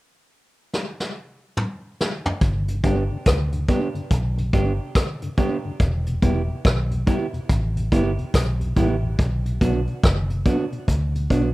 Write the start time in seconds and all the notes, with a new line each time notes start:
0.73 snare
1.00 snare
1.57 mid tom
2.01 snare
2.26 floor tom
2.41 G1, kick, closed hi-hat
2.68 G2 D3, closed hi-hat
2.84 G1 G3 B3 D4 G4, kick, closed hi-hat
3.11 G2 D3
3.26 D2, kick, cross-stick, closed hi-hat
3.52 G2 D3, closed hi-hat
3.68 G3 B3 D4 G4, kick, closed hi-hat
3.95 G2 D3, closed hi-hat
4.11 B1, kick, closed hi-hat
4.38 G2 D3, closed hi-hat
4.53 G1 G3 B3 D4 G4, kick, closed hi-hat
4.95 kick, cross-stick, closed hi-hat
5.22 G2 D3, closed hi-hat
5.37 G3 B3 D4 G4, kick, closed hi-hat
5.65 G2 D3
5.80 E1, kick, closed hi-hat
6.06 E2 B2, closed hi-hat
6.22 E1 G3 B3 E4 G4, kick, closed hi-hat
6.48 E2 B2
6.65 B1, kick, cross-stick, closed hi-hat
6.91 E2 B2, closed hi-hat
7.07 G3 B3 E4 G4, kick, closed hi-hat
7.33 E2 B2, closed hi-hat
7.49 A1, kick, closed hi-hat
7.76 E2 B2, closed hi-hat
7.92 G1 G3 B3 E4 G4, kick, closed hi-hat
8.18 E2 B2, closed hi-hat
8.34 B1, kick, cross-stick, closed hi-hat
8.60 E2 B2, closed hi-hat
8.76 A1 G3 B3 E4 G4, kick, closed hi-hat
9.03 E2 B2
9.19 B1, kick, closed hi-hat
9.46 B2, closed hi-hat
9.61 B1 F#3 B3 D4 F#4, kick, closed hi-hat
9.87 B2, closed hi-hat
10.03 F#1, kick, cross-stick, closed hi-hat
10.30 B2, closed hi-hat
10.45 F#3 B3 D4 F#4, kick, closed hi-hat
10.72 B2, closed hi-hat
10.88 D2, kick, closed hi-hat
11.15 B2, closed hi-hat
11.30 B1 F#3 B3 D4 F#4, kick, closed hi-hat